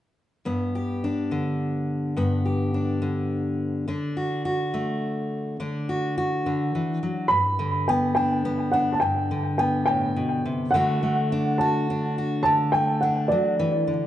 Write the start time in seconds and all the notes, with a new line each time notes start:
0.45 G2 B3
0.75 G4
1.04 D4
1.31 D3
2.17 G2 B3
2.45 G4
2.74 D4
3.02 D3
3.88 D3 D4
4.17 F#4
4.45 F#4
4.74 A3
5.60 D3 D4
5.89 F#4
6.18 F#4
6.46 D3
6.75 E3
7.03 F#3
7.28 G2 B5
7.59 D3
7.88 B3 G5
8.15 D4 G5
8.45 B3
8.72 D4 F#5
8.93 A5
9.00 G2 G5
9.31 D3
9.58 B3 G5
9.86 A2 G5
10.16 B2
10.46 C3
10.71 D3 F#5
10.75 A3 D4 F#4
11.03 A3
11.32 D4
11.58 F#4 A5
11.90 D4
12.18 F#4
12.43 D3 A5
12.72 A3 G5
13.01 D4 F#5
13.28 F#3 D5
13.59 E3
13.87 D3